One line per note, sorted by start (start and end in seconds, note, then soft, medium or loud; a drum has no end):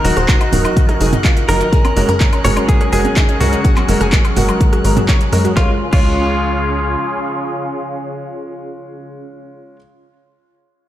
0.00 1.69 D#3 medium
0.00 1.69 D#4 medium
0.00 1.69 F#4 medium
0.00 5.53 A#4 medium
0.00 5.58 F#6 medium
0.04 0.12 D#1 medium
0.04 0.14 F#3 medium
0.04 0.14 D#4 medium
0.04 0.97 F#4 medium
0.04 0.14 A#4 loud
0.04 open hi-hat loud
0.04 shaker medium
0.17 0.32 D#1 medium
0.17 0.26 C5 medium
0.17 cross-stick medium
0.17 closed hi-hat soft
0.17 shaker soft
0.28 0.38 D#4 medium
0.28 kick loud
0.28 clap loud
0.28 closed hi-hat medium
0.28 shaker soft
0.41 0.50 D#4 medium
0.41 closed hi-hat soft
0.41 high woodblock medium
0.53 0.68 D#1 medium
0.53 0.98 F#3 medium
0.53 0.98 D#4 medium
0.53 0.98 A#4 medium
0.53 0.62 A#4 loud
0.53 mid tom medium
0.53 open hi-hat loud
0.53 high conga medium
0.53 shaker medium
0.65 0.74 D#4 medium
0.65 closed hi-hat soft
0.65 high woodblock medium
0.65 shaker soft
0.77 0.86 D#4 medium
0.77 kick loud
0.77 closed hi-hat medium
0.77 shaker soft
0.89 0.98 D#4 medium
0.89 cross-stick medium
0.89 closed hi-hat soft
1.00 1.16 F1 loud
1.00 1.11 F#3 medium
1.00 1.11 D#4 medium
1.00 1.10 G#4 medium
1.00 1.11 A#4 medium
1.00 open hi-hat medium
1.00 shaker medium
1.13 1.22 D#4 medium
1.13 closed hi-hat soft
1.13 mid tom loud
1.13 high conga loud
1.13 shaker soft
1.24 1.34 F4 medium
1.24 kick loud
1.24 clap loud
1.24 closed hi-hat medium
1.24 shaker medium
1.37 1.46 D#4 medium
1.37 closed hi-hat soft
1.49 1.64 F#1 medium
1.49 1.64 F#3 medium
1.49 1.58 D#4 medium
1.49 1.64 D#4 medium
1.49 1.64 A#4 medium
1.49 2.44 A#4 loud
1.49 cross-stick medium
1.49 open hi-hat loud
1.49 shaker medium
1.61 1.70 D#4 medium
1.61 closed hi-hat soft
1.61 shaker soft
1.73 5.53 F#3 medium
1.73 5.53 C#4 medium
1.73 1.82 G#4 loud
1.73 5.53 G#4 medium
1.73 kick loud
1.73 closed hi-hat medium
1.73 shaker soft
1.85 1.93 C#4 medium
1.85 closed hi-hat soft
1.85 high conga loud
1.85 high woodblock medium
1.97 2.04 F#1 loud
1.97 2.07 G#3 medium
1.97 2.06 C#4 medium
1.97 2.07 F#4 medium
1.97 2.06 A#4 loud
1.97 open hi-hat loud
1.97 shaker medium
2.09 2.24 F#2 medium
2.09 2.18 A#4 loud
2.09 cross-stick medium
2.09 closed hi-hat soft
2.09 shaker soft
2.20 2.30 C#4 medium
2.20 kick loud
2.20 clap loud
2.20 closed hi-hat medium
2.20 shaker soft
2.33 2.42 C#4 medium
2.33 closed hi-hat soft
2.33 high woodblock medium
2.45 2.60 F#1 medium
2.45 2.90 G#3 medium
2.45 2.90 F#4 medium
2.45 2.54 G#4 loud
2.45 2.90 A#4 medium
2.45 2.51 C#5 loud
2.45 mid tom medium
2.45 open hi-hat loud
2.45 high conga medium
2.45 shaker medium
2.57 2.66 C#4 medium
2.57 closed hi-hat soft
2.57 high woodblock medium
2.57 shaker soft
2.69 2.78 C#4 medium
2.69 2.91 G#4 loud
2.69 kick loud
2.69 closed hi-hat medium
2.69 shaker soft
2.81 2.90 C#4 medium
2.81 cross-stick medium
2.81 closed hi-hat soft
2.93 3.08 F#1 medium
2.93 3.03 G#3 medium
2.93 3.02 F#4 medium
2.93 3.37 G#4 loud
2.93 3.03 A#4 medium
2.93 open hi-hat loud
2.93 shaker medium
3.05 3.14 C#4 medium
3.05 closed hi-hat soft
3.05 high conga loud
3.05 shaker soft
3.16 3.26 D#4 loud
3.16 kick loud
3.16 clap loud
3.16 closed hi-hat medium
3.16 shaker soft
3.29 3.38 C#4 medium
3.29 closed hi-hat soft
3.41 3.56 C#2 medium
3.41 3.56 G#3 medium
3.41 3.50 C#4 medium
3.41 5.05 F#4 medium
3.41 3.56 F#4 medium
3.41 3.56 A#4 medium
3.41 mid tom medium
3.41 open hi-hat loud
3.41 shaker medium
3.53 3.62 C#4 medium
3.53 closed hi-hat soft
3.53 shaker soft
3.65 3.74 F#4 loud
3.65 kick loud
3.65 closed hi-hat medium
3.65 shaker soft
3.77 3.86 F#3 medium
3.77 clap soft
3.77 closed hi-hat soft
3.77 high conga loud
3.77 high woodblock medium
3.88 3.96 F#1 medium
3.88 3.98 F#3 medium
3.88 3.99 G#3 medium
3.88 3.99 F#4 medium
3.88 3.99 A#4 loud
3.88 open hi-hat loud
3.88 shaker medium
4.01 4.16 F#1 medium
4.01 4.10 G#4 medium
4.01 cross-stick medium
4.01 closed hi-hat soft
4.01 shaker soft
4.12 4.22 F#3 medium
4.12 kick loud
4.12 clap loud
4.12 closed hi-hat medium
4.12 shaker soft
4.25 4.34 F#3 medium
4.25 closed hi-hat soft
4.25 high woodblock medium
4.25 shaker soft
4.36 4.52 F#1 medium
4.36 4.82 G#3 medium
4.36 4.46 F#4 loud
4.36 4.82 F#4 medium
4.36 4.82 A#4 medium
4.36 mid tom medium
4.36 open hi-hat loud
4.36 high conga medium
4.36 shaker medium
4.49 4.58 F#3 medium
4.49 closed hi-hat soft
4.49 high woodblock medium
4.49 shaker soft
4.61 4.70 F#3 medium
4.61 kick loud
4.61 closed hi-hat medium
4.61 shaker soft
4.73 4.82 F#3 medium
4.73 cross-stick medium
4.73 closed hi-hat soft
4.85 5.00 G#1 loud
4.85 4.95 G#3 medium
4.85 4.95 F#4 medium
4.85 4.94 A#4 medium
4.85 4.95 A#4 medium
4.85 open hi-hat loud
4.85 shaker medium
4.97 5.06 F#3 medium
4.97 closed hi-hat soft
4.97 mid tom loud
4.97 high conga loud
4.97 shaker soft
5.08 5.18 C#5 medium
5.08 kick loud
5.08 clap loud
5.08 closed hi-hat medium
5.08 shaker soft
5.21 5.30 F#3 medium
5.21 closed hi-hat soft
5.33 5.48 F#2 medium
5.33 5.42 F#3 medium
5.33 5.48 G#3 medium
5.33 5.48 F#4 medium
5.33 5.48 A#4 medium
5.33 cross-stick medium
5.33 open hi-hat loud
5.33 shaker medium
5.45 5.54 F#3 medium
5.45 closed hi-hat soft
5.45 shaker soft
5.57 5.70 C#2 medium
5.57 5.70 G#3 medium
5.57 5.70 F4 medium
5.57 5.70 C#5 medium
5.57 5.70 C#5 loud
5.57 kick loud
5.57 snare medium
5.93 6.97 C#2 loud
5.93 9.76 G#3 medium
5.93 9.76 F4 medium
5.93 9.76 C#5 medium
5.93 9.76 C#5 loud
5.93 kick loud
5.93 crash medium